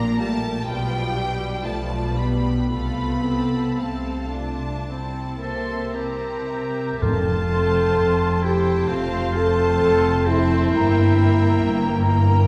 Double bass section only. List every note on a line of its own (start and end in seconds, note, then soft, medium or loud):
0.00 0.55 A#1 medium
0.67 1.53 B1 medium
1.66 2.58 B1 medium
2.72 3.67 C2 soft
3.79 4.76 C2 soft
4.90 5.84 C2 soft
5.97 6.90 C2 soft
7.01 7.86 F1 medium
7.98 8.80 F1 medium
8.91 9.70 F1 medium
9.81 10.63 F1 medium
10.74 11.52 G1 medium
11.63 12.42 G1 medium